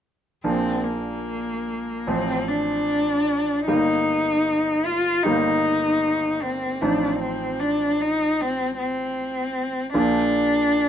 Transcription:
0, 0, Header, 1, 3, 480
1, 0, Start_track
1, 0, Key_signature, -2, "major"
1, 0, Tempo, 807537
1, 268, Time_signature, 4, 2, 24, 8
1, 2668, Tempo, 780234
1, 6604, End_track
2, 0, Start_track
2, 0, Title_t, "Cello"
2, 0, Program_c, 0, 42
2, 267, Note_on_c, 0, 60, 53
2, 500, Note_on_c, 0, 58, 43
2, 509, Note_off_c, 0, 60, 0
2, 1236, Note_on_c, 0, 60, 53
2, 1245, Note_off_c, 0, 58, 0
2, 1472, Note_on_c, 0, 62, 52
2, 1481, Note_off_c, 0, 60, 0
2, 2184, Note_off_c, 0, 62, 0
2, 2187, Note_on_c, 0, 63, 57
2, 2896, Note_on_c, 0, 65, 54
2, 2905, Note_off_c, 0, 63, 0
2, 3128, Note_on_c, 0, 63, 57
2, 3137, Note_off_c, 0, 65, 0
2, 3855, Note_on_c, 0, 60, 51
2, 3864, Note_off_c, 0, 63, 0
2, 4101, Note_on_c, 0, 62, 45
2, 4110, Note_off_c, 0, 60, 0
2, 4330, Note_off_c, 0, 62, 0
2, 4334, Note_on_c, 0, 60, 48
2, 4579, Note_on_c, 0, 62, 49
2, 4589, Note_off_c, 0, 60, 0
2, 4835, Note_on_c, 0, 63, 56
2, 4845, Note_off_c, 0, 62, 0
2, 5079, Note_on_c, 0, 60, 58
2, 5088, Note_off_c, 0, 63, 0
2, 5311, Note_off_c, 0, 60, 0
2, 5315, Note_on_c, 0, 60, 59
2, 6018, Note_off_c, 0, 60, 0
2, 6035, Note_on_c, 0, 62, 59
2, 6604, Note_off_c, 0, 62, 0
2, 6604, End_track
3, 0, Start_track
3, 0, Title_t, "Grand piano"
3, 0, Program_c, 1, 0
3, 261, Note_on_c, 1, 53, 26
3, 262, Note_on_c, 1, 34, 28
3, 262, Note_on_c, 1, 58, 25
3, 263, Note_on_c, 1, 62, 25
3, 392, Control_c, 1, 64, 127
3, 1209, Note_off_c, 1, 53, 0
3, 1210, Note_off_c, 1, 34, 0
3, 1210, Note_off_c, 1, 58, 0
3, 1210, Note_off_c, 1, 62, 0
3, 1231, Note_on_c, 1, 33, 35
3, 1232, Note_on_c, 1, 53, 30
3, 1233, Note_on_c, 1, 60, 28
3, 1246, Control_c, 1, 64, 0
3, 1354, Control_c, 1, 64, 127
3, 2166, Note_off_c, 1, 33, 0
3, 2166, Note_off_c, 1, 53, 0
3, 2166, Note_off_c, 1, 60, 0
3, 2185, Note_on_c, 1, 63, 26
3, 2186, Note_on_c, 1, 31, 30
3, 2187, Note_on_c, 1, 55, 25
3, 2187, Note_on_c, 1, 58, 27
3, 2203, Control_c, 1, 64, 0
3, 2300, Control_c, 1, 64, 127
3, 3114, Note_off_c, 1, 63, 0
3, 3115, Note_off_c, 1, 31, 0
3, 3115, Note_off_c, 1, 55, 0
3, 3116, Note_off_c, 1, 58, 0
3, 3138, Note_on_c, 1, 55, 31
3, 3140, Note_on_c, 1, 31, 37
3, 3140, Note_on_c, 1, 58, 30
3, 3141, Note_on_c, 1, 63, 30
3, 4077, Note_off_c, 1, 55, 0
3, 4078, Note_off_c, 1, 31, 0
3, 4078, Note_off_c, 1, 58, 0
3, 4078, Note_off_c, 1, 63, 0
3, 4100, Note_on_c, 1, 33, 33
3, 4100, Note_on_c, 1, 63, 27
3, 4101, Note_on_c, 1, 53, 26
3, 4101, Note_on_c, 1, 60, 27
3, 4113, Control_c, 1, 64, 0
3, 4223, Control_c, 1, 64, 127
3, 6006, Note_off_c, 1, 33, 0
3, 6006, Note_off_c, 1, 63, 0
3, 6007, Note_off_c, 1, 53, 0
3, 6007, Note_off_c, 1, 60, 0
3, 6020, Note_on_c, 1, 53, 28
3, 6023, Note_on_c, 1, 34, 38
3, 6023, Note_on_c, 1, 58, 30
3, 6025, Note_on_c, 1, 62, 30
3, 6042, Control_c, 1, 64, 0
3, 6146, Control_c, 1, 64, 127
3, 6604, Note_off_c, 1, 34, 0
3, 6604, Note_off_c, 1, 53, 0
3, 6604, Note_off_c, 1, 58, 0
3, 6604, Note_off_c, 1, 62, 0
3, 6604, End_track
0, 0, End_of_file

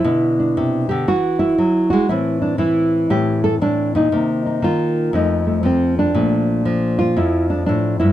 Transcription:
0, 0, Header, 1, 2, 480
1, 0, Start_track
1, 0, Tempo, 507614
1, 49, Time_signature, 4, 2, 24, 8
1, 7682, End_track
2, 0, Start_track
2, 0, Title_t, "Nylon-string guitar"
2, 0, Program_c, 0, 24
2, 0, Note_on_c, 0, 64, 98
2, 42, Note_on_c, 0, 47, 73
2, 54, Note_on_c, 0, 50, 49
2, 58, Note_on_c, 0, 62, 47
2, 361, Note_off_c, 0, 62, 0
2, 372, Note_on_c, 0, 62, 53
2, 531, Note_off_c, 0, 50, 0
2, 540, Note_on_c, 0, 48, 64
2, 836, Note_off_c, 0, 64, 0
2, 840, Note_on_c, 0, 67, 94
2, 851, Note_off_c, 0, 48, 0
2, 859, Note_on_c, 0, 50, 57
2, 986, Note_off_c, 0, 47, 0
2, 993, Note_off_c, 0, 62, 0
2, 1006, Note_off_c, 0, 67, 0
2, 1015, Note_off_c, 0, 50, 0
2, 1019, Note_on_c, 0, 52, 71
2, 1023, Note_on_c, 0, 66, 89
2, 1316, Note_on_c, 0, 64, 89
2, 1493, Note_off_c, 0, 52, 0
2, 1497, Note_on_c, 0, 54, 61
2, 1786, Note_off_c, 0, 66, 0
2, 1798, Note_on_c, 0, 66, 89
2, 1809, Note_off_c, 0, 54, 0
2, 1823, Note_on_c, 0, 56, 62
2, 1964, Note_off_c, 0, 64, 0
2, 1965, Note_off_c, 0, 66, 0
2, 1977, Note_on_c, 0, 64, 88
2, 1978, Note_off_c, 0, 56, 0
2, 1990, Note_on_c, 0, 45, 71
2, 1993, Note_on_c, 0, 52, 45
2, 2005, Note_on_c, 0, 60, 52
2, 2282, Note_off_c, 0, 64, 0
2, 2286, Note_on_c, 0, 62, 83
2, 2430, Note_off_c, 0, 52, 0
2, 2441, Note_on_c, 0, 52, 66
2, 2446, Note_off_c, 0, 62, 0
2, 2450, Note_on_c, 0, 64, 96
2, 2921, Note_off_c, 0, 45, 0
2, 2932, Note_on_c, 0, 45, 65
2, 2937, Note_on_c, 0, 67, 100
2, 3248, Note_off_c, 0, 67, 0
2, 3252, Note_on_c, 0, 69, 91
2, 3348, Note_off_c, 0, 69, 0
2, 3407, Note_off_c, 0, 45, 0
2, 3410, Note_off_c, 0, 64, 0
2, 3418, Note_on_c, 0, 45, 60
2, 3423, Note_on_c, 0, 62, 90
2, 3730, Note_off_c, 0, 45, 0
2, 3732, Note_off_c, 0, 62, 0
2, 3734, Note_on_c, 0, 46, 64
2, 3745, Note_on_c, 0, 63, 89
2, 3866, Note_off_c, 0, 52, 0
2, 3893, Note_off_c, 0, 46, 0
2, 3897, Note_on_c, 0, 48, 74
2, 3904, Note_on_c, 0, 51, 49
2, 3905, Note_off_c, 0, 60, 0
2, 3909, Note_on_c, 0, 58, 49
2, 4206, Note_off_c, 0, 63, 0
2, 4218, Note_on_c, 0, 63, 48
2, 4361, Note_off_c, 0, 51, 0
2, 4372, Note_on_c, 0, 51, 60
2, 4374, Note_off_c, 0, 48, 0
2, 4390, Note_on_c, 0, 65, 114
2, 4836, Note_off_c, 0, 63, 0
2, 4839, Note_off_c, 0, 58, 0
2, 4850, Note_off_c, 0, 51, 0
2, 4851, Note_on_c, 0, 41, 76
2, 4859, Note_off_c, 0, 65, 0
2, 4864, Note_on_c, 0, 53, 47
2, 4868, Note_on_c, 0, 57, 45
2, 4871, Note_on_c, 0, 63, 93
2, 5158, Note_off_c, 0, 57, 0
2, 5169, Note_on_c, 0, 57, 46
2, 5312, Note_off_c, 0, 53, 0
2, 5323, Note_on_c, 0, 53, 59
2, 5338, Note_off_c, 0, 63, 0
2, 5345, Note_on_c, 0, 60, 84
2, 5654, Note_off_c, 0, 60, 0
2, 5663, Note_on_c, 0, 62, 84
2, 5786, Note_off_c, 0, 53, 0
2, 5791, Note_off_c, 0, 57, 0
2, 5810, Note_off_c, 0, 41, 0
2, 5810, Note_on_c, 0, 46, 74
2, 5821, Note_on_c, 0, 53, 53
2, 5827, Note_on_c, 0, 57, 52
2, 6281, Note_off_c, 0, 53, 0
2, 6292, Note_on_c, 0, 53, 57
2, 6607, Note_on_c, 0, 65, 108
2, 6769, Note_off_c, 0, 46, 0
2, 6775, Note_on_c, 0, 41, 63
2, 6776, Note_off_c, 0, 62, 0
2, 6779, Note_on_c, 0, 64, 89
2, 7087, Note_off_c, 0, 64, 0
2, 7091, Note_on_c, 0, 62, 83
2, 7236, Note_off_c, 0, 62, 0
2, 7247, Note_on_c, 0, 62, 84
2, 7249, Note_off_c, 0, 65, 0
2, 7251, Note_off_c, 0, 41, 0
2, 7268, Note_on_c, 0, 45, 62
2, 7557, Note_off_c, 0, 62, 0
2, 7561, Note_on_c, 0, 64, 90
2, 7568, Note_off_c, 0, 45, 0
2, 7572, Note_on_c, 0, 43, 57
2, 7682, Note_off_c, 0, 43, 0
2, 7682, Note_off_c, 0, 53, 0
2, 7682, Note_off_c, 0, 57, 0
2, 7682, Note_off_c, 0, 64, 0
2, 7682, End_track
0, 0, End_of_file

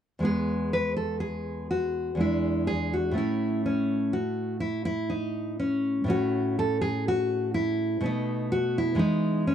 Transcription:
0, 0, Header, 1, 2, 480
1, 0, Start_track
1, 0, Key_signature, 4, "major"
1, 0, Tempo, 981997
1, 114, Time_signature, 3, 2, 24, 8
1, 2993, Tempo, 958466
1, 4708, End_track
2, 0, Start_track
2, 0, Title_t, "Nylon-string guitar"
2, 0, Program_c, 0, 24
2, 93, Note_on_c, 0, 40, 58
2, 99, Note_on_c, 0, 56, 50
2, 110, Note_on_c, 0, 59, 50
2, 121, Note_on_c, 0, 68, 88
2, 350, Note_off_c, 0, 68, 0
2, 358, Note_on_c, 0, 71, 87
2, 470, Note_off_c, 0, 71, 0
2, 472, Note_on_c, 0, 69, 71
2, 585, Note_off_c, 0, 69, 0
2, 587, Note_on_c, 0, 68, 81
2, 823, Note_off_c, 0, 68, 0
2, 834, Note_on_c, 0, 66, 80
2, 1045, Note_off_c, 0, 40, 0
2, 1051, Note_on_c, 0, 40, 51
2, 1053, Note_off_c, 0, 56, 0
2, 1058, Note_off_c, 0, 59, 0
2, 1061, Note_on_c, 0, 56, 44
2, 1068, Note_off_c, 0, 66, 0
2, 1076, Note_on_c, 0, 62, 38
2, 1078, Note_on_c, 0, 64, 78
2, 1306, Note_on_c, 0, 68, 88
2, 1309, Note_off_c, 0, 64, 0
2, 1432, Note_off_c, 0, 68, 0
2, 1435, Note_on_c, 0, 66, 73
2, 1522, Note_on_c, 0, 45, 56
2, 1528, Note_off_c, 0, 40, 0
2, 1531, Note_off_c, 0, 56, 0
2, 1533, Note_on_c, 0, 57, 50
2, 1538, Note_off_c, 0, 62, 0
2, 1540, Note_on_c, 0, 61, 47
2, 1551, Note_off_c, 0, 66, 0
2, 1553, Note_on_c, 0, 64, 79
2, 1782, Note_off_c, 0, 61, 0
2, 1782, Note_off_c, 0, 64, 0
2, 1787, Note_on_c, 0, 61, 79
2, 2019, Note_off_c, 0, 61, 0
2, 2019, Note_on_c, 0, 66, 86
2, 2248, Note_off_c, 0, 66, 0
2, 2250, Note_on_c, 0, 64, 73
2, 2366, Note_off_c, 0, 64, 0
2, 2372, Note_on_c, 0, 64, 93
2, 2491, Note_on_c, 0, 63, 78
2, 2501, Note_off_c, 0, 64, 0
2, 2731, Note_off_c, 0, 63, 0
2, 2735, Note_on_c, 0, 61, 80
2, 2947, Note_off_c, 0, 45, 0
2, 2953, Note_on_c, 0, 45, 61
2, 2959, Note_off_c, 0, 57, 0
2, 2964, Note_on_c, 0, 57, 54
2, 2966, Note_off_c, 0, 61, 0
2, 2972, Note_on_c, 0, 61, 57
2, 2980, Note_on_c, 0, 66, 100
2, 3218, Note_off_c, 0, 66, 0
2, 3226, Note_on_c, 0, 69, 94
2, 3337, Note_off_c, 0, 69, 0
2, 3339, Note_on_c, 0, 68, 93
2, 3465, Note_off_c, 0, 68, 0
2, 3473, Note_on_c, 0, 66, 97
2, 3702, Note_off_c, 0, 66, 0
2, 3704, Note_on_c, 0, 64, 92
2, 3912, Note_off_c, 0, 45, 0
2, 3917, Note_off_c, 0, 57, 0
2, 3922, Note_off_c, 0, 61, 0
2, 3936, Note_on_c, 0, 47, 58
2, 3938, Note_off_c, 0, 64, 0
2, 3941, Note_on_c, 0, 57, 45
2, 3951, Note_on_c, 0, 59, 53
2, 3961, Note_on_c, 0, 63, 81
2, 4188, Note_off_c, 0, 63, 0
2, 4192, Note_on_c, 0, 66, 103
2, 4312, Note_off_c, 0, 66, 0
2, 4324, Note_on_c, 0, 64, 88
2, 4408, Note_on_c, 0, 52, 68
2, 4409, Note_off_c, 0, 47, 0
2, 4411, Note_off_c, 0, 57, 0
2, 4413, Note_on_c, 0, 56, 57
2, 4417, Note_off_c, 0, 59, 0
2, 4424, Note_on_c, 0, 59, 58
2, 4430, Note_on_c, 0, 63, 98
2, 4438, Note_off_c, 0, 64, 0
2, 4661, Note_off_c, 0, 63, 0
2, 4671, Note_on_c, 0, 61, 91
2, 4708, Note_off_c, 0, 52, 0
2, 4708, Note_off_c, 0, 56, 0
2, 4708, Note_off_c, 0, 59, 0
2, 4708, Note_off_c, 0, 61, 0
2, 4708, End_track
0, 0, End_of_file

